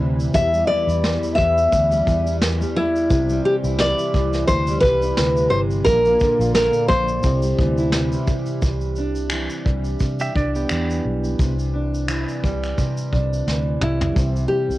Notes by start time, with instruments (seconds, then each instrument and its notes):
Already playing: steel-string acoustic guitar C3 G3 E4, reed electric piano C4 E4 G4
0.00 fingered electric bass D2, steel-string acoustic guitar E3
0.20 shaker
0.33 steel-string acoustic guitar E2, fingered electric bass E2, reed electric piano B3 E4 G4, nylon-string guitar E5, kick, shaker
0.38 reed electric piano E5
0.53 steel-string acoustic guitar G3, shaker
0.67 steel-string acoustic guitar E3, nylon-string guitar D5
0.87 fingered electric bass E2, steel-string acoustic guitar E4, shaker
1.04 steel-string acoustic guitar E2, snare, shaker
1.23 steel-string acoustic guitar G3, shaker
1.35 fingered electric bass E2, steel-string acoustic guitar E3, nylon-string guitar E5, kick
1.58 shaker
1.72 fingered electric bass D2, steel-string acoustic guitar E2, kick, shaker
1.91 steel-string acoustic guitar G3, shaker
2.06 fingered electric bass E2, steel-string acoustic guitar E3, kick, shaker
2.26 steel-string acoustic guitar E4, shaker
2.41 steel-string acoustic guitar E2, snare, shaker
2.60 steel-string acoustic guitar G3, shaker
2.75 steel-string acoustic guitar E3, nylon-string guitar E4
2.96 shaker
3.09 fingered electric bass C2, steel-string acoustic guitar C3, reed electric piano C4 E4 G4 D5, kick, shaker
3.29 steel-string acoustic guitar G3, shaker
3.45 steel-string acoustic guitar E3, nylon-string guitar G4
3.64 fingered electric bass C2, steel-string acoustic guitar E4, shaker
3.79 steel-string acoustic guitar C3, nylon-string guitar D5, snare, shaker
3.97 steel-string acoustic guitar G3, shaker
4.14 fingered electric bass C2, steel-string acoustic guitar E3, kick, shaker
4.33 snare, shaker
4.47 fingered electric bass D2, steel-string acoustic guitar C3, nylon-string guitar C5, kick, shaker
4.67 steel-string acoustic guitar G3, shaker
4.81 fingered electric bass C2, steel-string acoustic guitar E3, nylon-string guitar B4, kick, shaker
5.02 steel-string acoustic guitar E4, shaker
5.17 fingered electric bass D2, steel-string acoustic guitar C3, snare, shaker
5.37 steel-string acoustic guitar G3, shaker
5.50 fingered electric bass G1, steel-string acoustic guitar E3, nylon-string guitar C5
5.71 shaker
5.85 fingered electric bass A#1, steel-string acoustic guitar A#2, reed electric piano A#3 D4 F4, nylon-string guitar A#4, kick, shaker
5.89 reed electric piano D5
6.05 steel-string acoustic guitar A#3, shaker
6.20 steel-string acoustic guitar D3, kick, shaker
6.39 fingered electric bass A#1, steel-string acoustic guitar F4, shaker
6.55 steel-string acoustic guitar A#2, nylon-string guitar A#4, snare, shaker
6.73 steel-string acoustic guitar A#3, shaker
6.88 fingered electric bass A#1, steel-string acoustic guitar D3, nylon-string guitar C5, kick, shaker
7.08 shaker
7.23 fingered electric bass C2, steel-string acoustic guitar C3, reed electric piano C4 E4 G4 D5, kick, shaker
7.42 steel-string acoustic guitar G3, shaker
7.59 fingered electric bass D2, steel-string acoustic guitar E3, kick
7.78 steel-string acoustic guitar E4, shaker
7.92 steel-string acoustic guitar C3, snare, shaker
8.12 steel-string acoustic guitar G3, shaker
8.28 steel-string acoustic guitar E3, kick, shaker
8.46 shaker
8.62 fingered electric bass C2, steel-string acoustic guitar C3, kick, shaker
8.81 shaker
8.96 steel-string acoustic guitar D4, shaker
9.15 shaker
9.30 steel-string acoustic guitar E3, finger snap, shaker
9.50 shaker
9.66 fingered electric bass C2, steel-string acoustic guitar G3, kick
9.84 shaker
10.00 fingered electric bass C3, kick, shaker
10.19 pedal steel guitar G4 E5, shaker
10.35 fingered electric bass C2, steel-string acoustic guitar D4, pedal steel guitar D5, kick
10.55 pedal steel guitar B3 G4, shaker
10.69 fingered electric bass E2, steel-string acoustic guitar E3, finger snap, shaker
10.90 shaker
11.05 fingered electric bass B1, steel-string acoustic guitar G3
11.24 shaker
11.39 fingered electric bass C2, steel-string acoustic guitar C3, kick, shaker
11.59 shaker
11.74 steel-string acoustic guitar D4
11.94 shaker
12.08 steel-string acoustic guitar E3, finger snap, shaker
12.29 shaker
12.43 fingered electric bass C2, steel-string acoustic guitar G3, kick, shaker
12.64 finger snap, shaker
12.77 steel-string acoustic guitar C3, fingered electric bass C3, kick, shaker
12.97 shaker
13.12 fingered electric bass C2, steel-string acoustic guitar D4, kick
13.33 shaker
13.47 fingered electric bass D2, steel-string acoustic guitar E3, snare
13.81 fingered electric bass C2, steel-string acoustic guitar G3, nylon-string guitar E4, mid tom
14.01 floor tom
14.15 fingered electric bass C2, steel-string acoustic guitar C3, reed electric piano G3 E4, kick, shaker
14.19 reed electric piano C5
14.36 shaker
14.48 steel-string acoustic guitar G3, nylon-string guitar G4
14.69 fingered electric bass C2, shaker